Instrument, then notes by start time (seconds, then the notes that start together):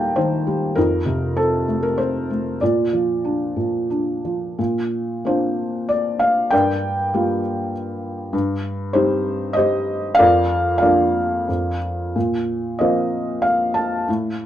felt piano
Already playing: D#2 A#2 G3 A#3 D#5 G5 A5 A#5
0.16 D#3 C5
0.47 G3
0.75 F2 D#4 A#4
1.06 C3
1.36 C4 A4
1.68 A3
1.83 A#4
1.98 C4 C5
2.31 A3
2.61 A#2 F4 D5
2.93 F3
3.24 D4
3.56 A#2
3.90 D4
4.25 F3
4.59 A#2
5.25 A#3 C4 D4 F4 C5
5.89 D5
6.19 F5
6.51 G2 A#4 D5 G5
7.14 G3 A#3 F4
8.33 G2
8.93 G3 C4 D#4 G4 C5
9.53 G4 C5 D#5
10.15 F5
10.19 F2 A#4 D5
10.78 F3 A#3 A#4 D5 F5
10.82 D4
11.48 F2
12.16 A#2
12.79 F3 A#3 C4 A#4 C5 D#5
13.42 F5
13.74 A5
14.08 A2